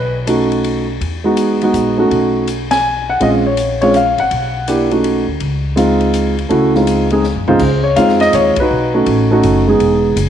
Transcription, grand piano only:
0.00 0.13 B4 medium
0.27 0.83 A3 soft
0.27 0.83 C#4 soft
0.27 0.84 D#4 soft
0.27 0.84 F#4 soft
1.24 1.59 G#3 medium
1.24 1.59 B3 soft
1.24 1.59 D#4 soft
1.24 1.59 F#4 medium
1.63 1.96 G#3 soft
1.63 1.97 B3 soft
1.63 1.97 D#4 soft
1.63 1.97 F#4 medium
1.98 2.45 A3 medium
1.98 2.45 C#4 soft
1.98 2.45 D#4 soft
1.98 2.46 F#4 medium
2.71 3.09 G#5 loud
3.10 3.21 F#5 medium
3.20 3.42 G#3 medium
3.20 3.42 C4 soft
3.20 3.42 C#4 soft
3.20 3.43 F4 medium
3.20 3.27 D#5 medium
3.46 3.80 C#5 medium
3.81 3.93 G#3 medium
3.81 3.93 C4 medium
3.81 3.94 C#4 soft
3.81 3.94 F4 medium
3.81 3.94 C#5 medium
3.96 4.19 F5 medium
4.20 4.88 F#5 medium
4.68 4.89 A#3 soft
4.68 4.89 D4 soft
4.68 4.89 E4 soft
4.68 4.89 G4 medium
4.91 5.23 A3 soft
4.91 5.23 C#4 soft
4.91 5.23 D#4 soft
4.91 5.23 F#4 soft
5.76 6.32 G#3 medium
5.76 6.32 C4 medium
5.76 6.33 D#4 soft
5.76 6.33 F4 medium
6.49 6.71 A3 medium
6.49 6.71 C#4 soft
6.49 6.72 E4 medium
6.49 6.72 F#4 medium
6.75 7.06 G#3 medium
6.75 7.06 C4 soft
6.75 7.07 D#4 soft
6.75 7.07 F4 medium
7.11 7.22 G#3 medium
7.11 7.23 C4 soft
7.11 7.23 D#4 soft
7.11 7.23 G#4 medium
7.48 7.59 C#3 medium
7.48 7.59 G#3 medium
7.48 7.59 C4 medium
7.48 7.59 D#4 medium
7.48 7.59 F4 medium
7.48 7.83 G#4 medium
7.48 7.81 C5 medium
7.84 7.97 C#5 medium
7.96 8.52 G#3 medium
7.96 8.53 C4 medium
7.96 8.53 D#4 medium
7.96 8.53 F4 medium
7.96 8.21 F5 medium
8.21 8.32 D#5 loud
8.35 8.58 C#5 medium
8.60 8.93 D#4 medium
8.60 8.94 F#4 soft
8.60 8.92 B4 medium
8.94 9.28 A3 soft
8.94 9.28 C#4 soft
8.94 9.28 D#4 soft
8.94 9.29 F#4 medium
9.31 9.65 A3 medium
9.31 9.65 C#4 medium
9.31 9.65 D#4 medium
9.31 9.66 F#4 medium
9.68 10.14 G#3 medium
9.68 10.14 B3 soft
9.68 10.15 D#4 soft
9.68 10.15 G#4 medium

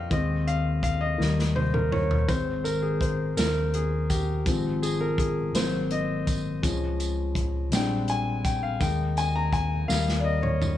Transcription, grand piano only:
0.00 0.13 A#4 medium
0.00 0.13 C5 medium
0.00 0.13 C#5 medium
0.00 0.13 D5 medium
0.00 0.12 D#5 medium
0.00 0.13 F5 medium
0.00 0.13 G5 medium
0.10 1.16 D#3 soft
0.10 1.16 G#3 soft
0.10 1.16 C4 medium
0.10 0.45 D#5 medium
0.47 0.82 F5 medium
0.83 1.02 F5 medium
1.01 1.57 D#5 medium
1.18 1.67 D#3 soft
1.18 1.68 G3 soft
1.18 1.68 A#3 soft
1.56 1.75 C5 medium
1.74 1.93 A#4 medium
1.92 2.30 C#5 medium
2.28 2.77 D#3 soft
2.28 2.77 G#3 soft
2.28 2.77 C4 medium
2.28 2.66 C5 medium
2.64 2.69 A#4 medium
2.82 3.01 G#4 medium
3.01 3.38 C5 medium
3.37 3.75 A#4 medium
3.74 4.11 G#4 medium
4.10 4.84 G4 medium
4.46 5.51 F3 medium
4.46 5.51 G#3 soft
4.46 5.51 C4 medium
4.82 5.01 G#4 medium
5.01 5.19 A#4 medium
5.19 5.56 G#4 medium
5.54 6.59 F#3 medium
5.54 6.59 A#3 soft
5.54 6.60 C4 medium
5.54 5.92 C5 medium
5.92 6.96 D#5 medium
6.63 7.11 F3 soft
6.63 7.11 G#3 soft
6.63 7.12 C#4 medium
7.72 8.77 G3 medium
7.72 8.77 G#3 soft
7.72 8.77 C4 soft
7.72 8.77 D4 medium
7.72 8.11 G5 medium
8.10 8.46 G#5 medium
8.45 8.63 G5 medium
8.63 8.81 F5 medium
8.80 9.85 G#3 medium
8.80 9.85 A#3 soft
8.80 9.86 D#4 medium
8.80 9.18 G5 medium
9.18 9.34 G#5 loud
9.36 9.54 A#5 medium
9.53 9.87 G#5 medium
9.88 10.37 G3 medium
9.88 10.37 A#3 soft
9.88 10.37 D#4 medium
9.88 10.21 F5 medium
10.20 10.25 D5 medium
10.24 10.44 D#5 medium
10.42 10.77 C#5 medium

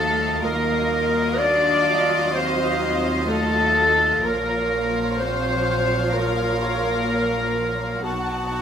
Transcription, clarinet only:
0.00 0.43 A4 medium
0.44 1.40 A#4 medium
1.39 2.36 D5 medium
2.34 3.01 C5 medium
3.29 4.27 A4 medium
4.25 5.19 A#4 medium
5.20 6.16 C5 medium
6.14 8.05 A#4 medium
8.04 8.62 F#4 medium

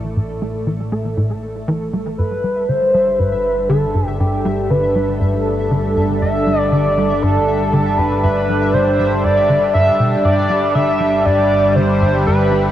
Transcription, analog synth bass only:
0.16 0.40 A2 medium
0.42 0.66 A3 medium
0.67 0.83 E3 medium
0.92 1.08 A3 medium
1.17 1.34 A2 medium
1.68 1.92 E3 loud
1.93 2.09 G3 medium
2.19 2.42 G2 medium
2.44 2.68 G3 medium
2.69 2.85 D3 medium
2.94 3.10 G3 medium
3.19 3.35 G2 medium
3.70 3.86 D3 loud
3.95 4.04 G2 medium
4.20 4.44 G2 medium
4.45 4.69 G3 medium
4.70 4.87 D3 medium
4.95 5.12 G3 medium
5.21 5.37 G2 medium
5.71 5.87 D3 loud
5.96 6.06 G2 medium
6.22 6.46 G2 medium
6.47 6.71 G3 medium
6.72 6.88 D3 medium
6.97 7.14 G3 medium
7.23 7.39 G2 medium
7.73 7.89 D3 loud
7.98 8.08 G2 medium
8.24 8.47 G2 medium
8.49 8.73 G3 medium
8.74 8.90 D3 medium
8.99 9.15 G3 medium
9.24 9.40 G2 medium
9.49 9.59 D3 loud
9.75 9.91 G2 loud
10.00 10.16 B2 medium
10.25 10.49 G2 medium
10.50 10.74 G3 medium
10.75 10.92 D3 medium
11.00 11.17 G3 medium
11.26 11.42 G2 medium
11.76 11.92 D3 loud
12.01 12.11 G2 medium
12.26 12.51 G2 medium
12.52 12.72 G3 medium

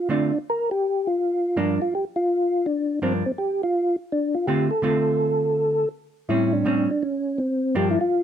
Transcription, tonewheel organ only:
0.11 0.38 D4 medium
0.50 0.70 A#4 medium
0.71 1.08 G4 loud
1.07 1.57 F4 medium
1.57 1.80 D4 medium
1.82 1.94 F4 medium
1.95 2.05 G4 medium
2.16 2.67 F4 medium
2.66 2.99 D4 medium
3.03 3.13 C4 medium
3.26 3.32 C4 medium
3.38 3.62 G4 loud
3.63 3.96 F4 medium
4.12 4.35 D4 medium
4.34 4.46 F4 medium
4.47 4.69 G4 medium
4.71 5.89 A4 medium
6.29 6.53 E4 medium
6.53 6.90 D4 medium
6.91 7.03 D4 medium
7.03 7.40 C#4 medium
7.38 7.76 C4 medium
7.76 7.89 G4 loud
7.91 7.99 E4 medium
8.01 8.23 F4 loud

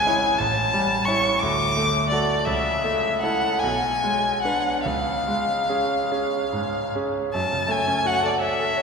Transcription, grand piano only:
0.00 0.38 C#2 soft
0.00 0.27 G#3 soft
0.07 0.37 E4 soft
0.07 0.37 C#5 soft
0.40 1.38 A1 soft
0.74 1.28 G3 soft
1.08 1.38 E4 soft
1.08 1.39 C#5 soft
1.43 2.42 D2 medium
1.77 2.31 A3 soft
2.12 2.43 F#4 soft
2.12 2.43 A4 soft
2.47 3.58 C#2 soft
2.84 3.46 A3 soft
3.23 3.58 E4 soft
3.23 3.58 A4 soft
3.63 4.81 B1 soft
4.04 4.68 G#3 soft
4.45 4.81 D4 soft
4.45 4.81 B4 soft
4.86 7.30 C#2 soft
5.27 5.94 G#3 soft
5.69 6.07 C#4 soft
5.69 6.07 G#4 soft
6.12 6.49 C#4 soft
6.12 6.49 G#4 soft
6.53 7.18 G#2 soft
6.95 7.30 C#4 soft
6.95 7.30 G#4 soft
7.34 8.82 F#2 soft
7.52 7.80 C#3 soft
7.68 7.97 A3 soft
7.87 8.15 C#4 soft
8.05 8.33 F#4 soft
8.23 8.51 A4 soft
8.41 8.70 C#5 soft
8.60 8.82 A4 soft
8.77 8.82 C#5 soft

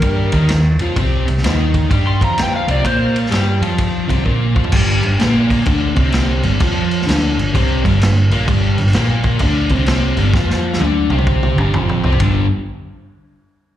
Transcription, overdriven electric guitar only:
0.03 0.32 G3 medium
0.03 0.33 G4 medium
0.34 0.49 D#3 medium
0.34 0.50 D#4 loud
0.50 0.74 D#3 medium
0.81 0.96 F3 medium
0.81 0.97 F4 loud
0.97 1.25 C3 loud
0.97 1.27 C4 loud
1.27 1.40 C3 medium
1.44 1.90 D#3 medium
1.44 1.91 D#4 loud
1.90 2.20 G3 loud
1.90 2.20 G4 medium
2.21 2.67 F3 medium
2.21 2.67 F4 loud
2.68 2.84 C3 medium
2.68 2.85 C4 loud
2.84 3.30 A#3 medium
2.84 3.31 A#4 loud
3.30 3.61 G3 loud
3.30 3.61 G4 loud
3.61 4.08 F3 medium
3.61 4.08 F4 loud
4.08 4.24 C3 medium
4.08 4.25 C4 loud
4.25 4.55 A#2 loud
4.25 4.55 A#3 loud
4.55 4.72 F3 loud
4.55 4.72 F4 loud
4.72 5.01 G2 medium
4.72 5.02 G3 loud
5.02 5.16 G2 medium
5.19 5.66 A#2 loud
5.19 5.66 A#3 loud
5.66 5.95 D3 medium
5.66 5.96 D4 loud
5.95 6.42 C3 medium
5.95 6.43 C4 loud
6.44 6.60 G2 medium
6.44 6.60 G3 loud
6.61 7.06 F3 medium
6.61 7.06 F4 loud
7.06 7.36 D3 medium
7.06 7.36 D4 loud
7.36 7.50 G2 medium
7.53 7.83 C3 loud
7.53 7.83 C4 loud
7.84 8.00 G2 medium
7.84 8.00 G3 loud
8.02 8.25 G2 medium
8.32 8.47 A#2 medium
8.32 8.47 A#3 loud
8.47 8.77 G2 medium
8.47 8.77 G3 loud
8.79 8.91 G2 medium
8.96 9.41 A#2 medium
8.96 9.41 A#3 loud
9.42 9.70 D3 medium
9.42 9.71 D4 loud
9.71 10.17 C3 medium
9.71 10.17 C4 loud
10.19 10.34 G2 medium
10.19 10.34 G3 loud
10.35 10.80 F3 medium
10.35 10.81 F4 loud
10.80 11.10 D3 loud
10.80 11.10 D4 loud
11.11 11.57 C3 medium
11.11 11.57 C4 loud
11.57 11.73 G2 medium
11.57 11.74 G3 loud
11.74 12.03 F2 medium
11.74 12.03 F3 loud
12.04 12.20 C3 loud
12.04 12.21 C4 loud
12.20 12.45 G2 medium
12.20 12.45 D3 loud
12.20 12.45 G3 loud

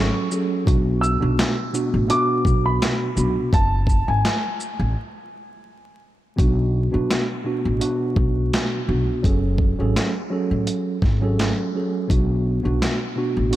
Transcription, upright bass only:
0.67 1.15 B1 loud
1.22 1.36 B1 medium
1.94 2.08 A1 medium
2.45 2.76 B1 medium
3.17 3.34 B1 loud
3.53 4.01 F#1 loud
4.08 4.22 G#1 medium
4.79 4.93 A1 medium
6.38 6.86 B1 loud
6.94 7.08 B1 medium
7.65 7.79 A1 medium
8.16 8.47 B1 medium
8.89 9.06 B1 medium
9.24 9.72 F#1 loud
9.80 9.93 G#1 medium
10.51 10.65 A1 medium
11.02 11.50 G#1 medium
12.10 12.58 B1 loud
12.65 12.79 B1 medium
13.37 13.50 A1 medium

